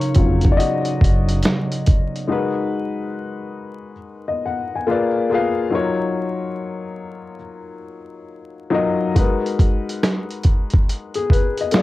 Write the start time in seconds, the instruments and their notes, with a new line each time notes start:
Already playing: ambient pad C#3 F#3 D#4, upright piano C#4 F4 A#4 C#5
0.01 closed hi-hat
0.15 fingered electric bass F1, upright piano F#3 C#4 F4, kick, closed hi-hat
0.41 kick, closed hi-hat
0.52 upright piano D5
0.57 upright piano F#4 D#5, closed hi-hat
0.85 closed hi-hat
1.01 fingered electric bass F#1, kick, closed hi-hat
1.29 closed hi-hat
1.43 snare, closed hi-hat
1.72 closed hi-hat
1.86 kick, closed hi-hat
2.16 closed hi-hat
2.27 upright piano G#3 D#4 F#4 A#4
2.32 upright piano B4
4.28 upright piano D#5
4.45 upright piano F#5
4.75 upright piano G#5
4.87 upright piano A#3 F4 G#4 B4
4.91 upright piano D5
5.30 upright piano A#3 F4 G#4 B4
5.34 upright piano F5
5.70 upright piano F#3 D#4 F4 A#4
5.75 upright piano C#5
8.70 upright piano F#3 D#4 F4 A#4
8.75 upright piano D#5
9.14 upright piano G#3 D#4 F#4 A#4, kick, closed hi-hat
9.19 upright piano B4
9.46 closed hi-hat
9.59 kick, closed hi-hat
9.89 closed hi-hat
10.03 snare, closed hi-hat
10.31 closed hi-hat
10.44 kick, closed hi-hat
10.70 kick, closed hi-hat
10.89 closed hi-hat
11.14 upright piano G#4, closed hi-hat
11.30 upright piano B4, kick, closed hi-hat
11.58 upright piano D#5, closed hi-hat
11.71 upright piano A#3 F4 G#4 B4, snare, closed hi-hat
11.76 upright piano D5